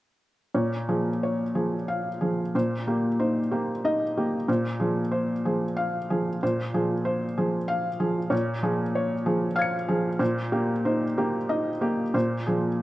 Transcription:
0.54 2.51 A#2 soft
0.54 1.08 C#5 soft
0.89 1.42 F3 soft
0.89 1.42 G#4 soft
1.23 1.76 C#5 soft
1.55 2.08 F3 soft
1.55 2.08 G#4 soft
1.88 2.41 F5 medium
2.21 2.54 F3 soft
2.21 2.54 G#4 soft
2.55 4.44 A#2 soft
2.55 3.07 C5 soft
2.87 3.38 A#3 soft
2.87 3.39 G4 soft
3.20 3.71 D#4 soft
3.20 3.71 C5 soft
3.51 4.03 A#3 soft
3.51 4.03 G4 soft
3.84 4.35 D#4 soft
3.84 4.35 D#5 medium
4.18 4.49 A#3 soft
4.18 4.48 G4 soft
4.48 6.38 A#2 soft
4.48 4.99 C5 soft
4.80 5.31 F3 soft
4.80 5.31 G#4 soft
5.12 5.64 C5 soft
5.45 5.97 F3 soft
5.45 5.97 G#4 soft
5.77 6.28 F5 medium
6.10 6.42 F3 soft
6.10 6.42 G#4 soft
6.43 8.28 A#2 soft
6.43 6.94 C5 soft
6.74 7.25 F3 soft
6.74 7.25 G#4 soft
7.05 7.55 C5 soft
7.38 7.87 F3 soft
7.38 7.87 G#4 soft
7.68 8.19 F5 medium
8.00 8.31 F3 soft
8.00 8.32 G#4 soft
8.30 10.16 A#2 medium
8.30 8.81 C#5 medium
8.62 9.13 F3 soft
8.62 9.13 G#4 medium
8.95 9.45 C#5 soft
9.26 9.76 F3 soft
9.26 9.76 G#4 soft
9.56 10.07 F5 medium
9.56 10.16 F6 soft
9.56 10.17 G#6 soft
9.62 10.18 C#7 soft
9.89 10.20 F3 soft
9.89 10.20 G#4 soft
10.19 12.10 A#2 medium
10.19 10.71 C5 soft
10.52 11.04 A#3 soft
10.52 11.04 G4 soft
10.85 11.37 D#4 soft
10.85 11.37 C5 soft
11.18 11.69 A#3 soft
11.18 11.70 G4 soft
11.49 12.02 D#4 soft
11.49 12.01 D#5 medium
11.81 12.14 A#3 soft
11.81 12.14 G4 soft
12.14 12.82 A#2 medium
12.14 12.67 C5 medium
12.47 12.82 F3 soft
12.47 12.82 G#4 soft

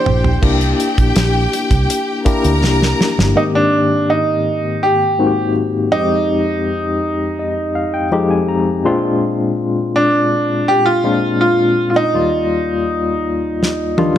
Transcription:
0.00 0.42 A#3 medium
0.00 0.43 D4 medium
0.00 0.43 E4 medium
0.00 0.39 G4 medium
0.00 0.43 G4 medium
0.00 0.40 C5 medium
0.00 0.39 G5 medium
0.06 0.36 A#1 medium
0.06 mid tom medium
0.24 floor tom medium
0.42 0.72 C2 loud
0.42 1.37 A#3 medium
0.42 1.37 D4 medium
0.42 1.37 E4 medium
0.42 2.22 G4 medium
0.42 1.38 G4 medium
0.42 2.22 G5 medium
0.42 kick medium
0.42 crash medium
0.61 closed hi-hat soft
0.80 closed hi-hat medium
0.98 1.13 A#1 medium
0.98 kick medium
0.98 closed hi-hat soft
1.16 1.46 A#1 medium
1.16 snare loud
1.16 closed hi-hat medium
1.53 closed hi-hat medium
1.71 1.86 C2 medium
1.71 kick medium
1.71 closed hi-hat medium
1.90 closed hi-hat loud
2.25 2.96 A#3 medium
2.25 2.97 D4 medium
2.25 2.97 E4 medium
2.25 2.97 G4 loud
2.25 3.34 A#4 medium
2.25 3.34 A#5 medium
2.25 muted fingered electric bass stroke soft
2.25 kick medium
2.25 closed hi-hat medium
2.44 2.63 D2 loud
2.44 closed hi-hat soft
2.63 2.92 C2 medium
2.63 snare medium
2.82 snare medium
3.01 snare medium
3.18 3.33 G1 medium
3.18 snare medium
3.35 4.30 G#2 medium
3.35 4.31 D#3 medium
3.35 4.30 A#3 medium
3.35 3.42 B3 medium
3.35 3.42 D#4 medium
3.35 4.31 G4 medium
3.42 4.34 C4 medium
3.55 4.11 D4 medium
4.10 4.85 D#4 medium
4.83 5.52 G4 medium
5.18 5.90 G#2 medium
5.18 5.90 A#3 medium
5.18 5.90 C4 medium
5.18 5.90 D#4 medium
5.18 5.26 F#4 medium
5.26 5.91 G4 medium
5.91 7.09 F2 medium
5.91 7.09 G#3 medium
5.91 7.09 C4 medium
5.91 8.08 D#4 loud
5.91 7.10 D#4 medium
5.91 7.10 G4 medium
7.39 7.73 D#5 medium
7.75 7.92 F5 medium
7.94 8.28 G5 medium
8.11 8.83 F2 medium
8.11 8.83 G#3 medium
8.11 8.83 C4 medium
8.11 8.83 D#4 medium
8.11 8.83 G4 loud
8.30 8.47 G#5 medium
8.48 8.83 A#5 medium
8.84 10.02 A#2 medium
8.84 10.02 G#3 medium
8.84 10.03 C4 medium
8.84 10.03 D4 medium
8.84 10.03 F4 loud
8.84 9.19 C6 medium
9.96 10.71 D4 medium
10.68 10.87 G4 loud
10.86 11.39 F4 loud
11.04 11.75 A#2 medium
11.04 11.75 G#3 medium
11.04 11.76 C4 medium
11.04 11.76 D4 medium
11.04 11.76 F4 medium
11.41 11.89 F4 medium
11.90 11.97 F4 medium
11.96 14.12 D#4 loud
12.14 13.09 D#2 medium
12.14 13.09 G3 medium
12.14 13.09 A#3 medium
12.14 13.09 F4 medium
12.14 13.09 D5 medium
13.63 snare medium
13.97 14.18 D#2 medium
13.97 14.18 G3 medium
13.97 14.18 A#3 medium
13.97 14.18 D4 medium
13.97 14.18 F4 medium
13.97 high tom medium

